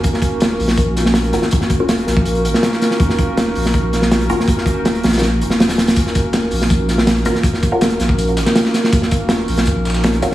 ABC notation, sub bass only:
X:1
M:4/4
L:1/16
Q:1/4=162
K:Ebm
V:1 name="Sub bass" clef=bass
E,,,3 E,,,3 B,,,8 A,,, z | E,,,3 E,,,3 B,,,4 A,,, z4 z | E,,,3 E,,,3 B,,,8 A,,, z | E,,,3 E,,,3 B,,,4 E,,,6 |
E,,,3 E,,,3 B,,,8 A,,, z | E,,,3 E,,,3 B,,,4 A,,, z4 z | E,,,3 E,,,3 B,,,8 A,,, z |]